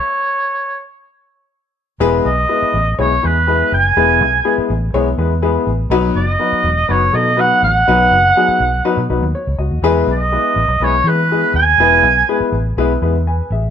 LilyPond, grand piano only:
\new Staff \with { instrumentName = "Grand piano" } { \time 4/4 \key e \major \tempo 4 = 123 << { r1 | r1 | r1 | r1 |
r2. cis''8 <fis' dis''>8~ | <fis' dis''>8 r2. r8 | r2. <b' gis''>8 <gis' e''>8 | } \\ { r1 | <gis b e' gis' b'>8 r8 <gis b e' gis' b'>8 r8 <gis b e' gis' cis''>16 r16 <gis b e' gis' b'>16 r16 <gis b e' gis' b'>8 r8 | <gis b e' gis' b'>8 r8 <gis b e' gis' b'>8 r8 <gis b e' gis' cis''>16 r16 <gis b e' gis' b'>16 r16 <gis b e' gis' b'>8 r8 | <fis b dis' fis' b'>8 r8 <fis b dis' fis' b'>8 r8 <fis b dis' fis' b'>16 r16 <fis b dis' fis' a'>16 r16 <fis b dis' fis' b'>8 r8 |
<fis b dis' fis' b'>8 r8 <fis b dis' fis' gis'>8 r8 <fis b dis' fis' b'>16 r16 <fis b dis' fis' b'>16 r4 r16 | <gis b e' gis' b'>8 r8 <gis b e' gis' b'>8 r8 <gis b e' gis' b'>16 r16 <gis b e' gis' b'>16 r16 <gis b e' gis' b'>8 r8 | <gis b e' gis' b'>8 r8 <gis b e' gis' b'>8 r8 <gis b e' gis' b'>16 r16 <gis b e' gis' b'>16 r4 r16 | } >> }